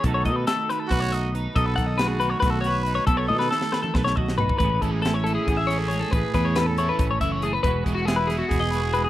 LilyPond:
<<
  \new Staff \with { instrumentName = "Clean electric guitar" } { \time 7/8 \key a \lydian \tempo 4 = 138 a'16 cis''16 dis''16 b'16 a'8 b'16 a'16 b'16 cis''16 dis''8 b'8 | dis''16 b'16 fis''16 dis''16 b'16 gis'16 b'16 cis''16 b'16 a'16 cis''8 b'16 cis''16 | a'16 cis''16 dis''16 b'16 a'8 b'16 a'16 b'16 cis''16 dis''8 b'8 | b'8 a'16 gis'16 a'16 cis''16 a'16 gis'8 e''16 cis''16 a'16 cis''16 a'16 |
b'8 b'16 cis''16 b'16 a'16 cis''16 b'8 cis''16 e''16 cis''16 gis'16 b'16 | b'8 gis'16 fis'16 gis'16 b'16 gis'16 fis'8 dis''16 b'16 gis'16 b'16 gis'16 | }
  \new Staff \with { instrumentName = "Trumpet" } { \time 7/8 \key a \lydian a'4. r8 fis'4 r8 | a'4 fis'4 fis'8 b'4 | a'2. r8 | r4 e'4 gis'4. |
gis'4 a'4. r4 | r4 e'4 gis'4. | }
  \new Staff \with { instrumentName = "Overdriven electric guitar" } { \time 7/8 \key a \lydian r2. r8 | r2. r8 | r2. r8 | r8 <e a cis' e'>8 r8 <e a cis' e'>8 r8 <e a cis' e'>8 r8 |
r8 <e a cis' e'>8 r8 <e a cis' e'>8 r8 <e a cis' e'>8 r8 | r8 <e gis b e'>8 r8 <e gis b e'>8 r8 <e gis b e'>8 r8 | }
  \new Staff \with { instrumentName = "Clean electric guitar" } { \time 7/8 \key a \lydian << { <dis a dis' fis'>4 a4 a8 dis'8 dis'8 | r4 a4 a8 fis'8 dis'8 | r4 a4 a8 fis'8 dis'8 | <e gis cis' gis'>4 cis'8 cis'8 b16 cis'16 cis'8 gis8 |
r4 cis'8 e'8 cis'8 e'8 a8 | <e gis b fis'>4 b8 b8 b8 fis'8 gis8 | } \\ { b,8 dis4 dis2 | b,8 dis4 dis2 | b,8 dis4 dis2 | a,8 e2. |
a,8 e2. | e,8 e2. | } >> }
  \new Staff \with { instrumentName = "Picked electric bass" } { \clef bass \time 7/8 \key a \lydian b,,8 b,8 r4 b,,4. | b,,8 b,,4. b,,4. | b,,8 b,8 r4 b,,4. | a,,8 a,,4. a,,4. |
a,,16 r16 e,4. a,,8 fis,,4 | e,,8 e,,4. e,,4. | }
  \new DrumStaff \with { instrumentName = "Drums" } \drummode { \time 7/8 <hh bd>8 <hh bd>8 <hh sn>8 <hh sn>8 <hh bd>8 hh8 hh8 | <hh bd>8 <hh bd>8 <hh sn>8 hh8 <hh bd sn>8 <hh sn>8 hh8 | <hh bd>8 tommh16 sn16 sn16 sn16 sn16 toml16 <bd sn>16 sn16 bd16 sn16 tomfh16 bd16 | <hh bd>8 <hh bd>8 <hh sn>8 hh8 <hh bd>8 <hh sn>8 hh8 |
<hh bd>8 <hh bd sn>8 <hh sn>8 hh8 <hh bd>8 <hh bd>8 hh8 | <hh bd>8 <hh bd>8 <hh sn>8 <hh sn>8 <hh bd>8 hh8 hh8 | }
>>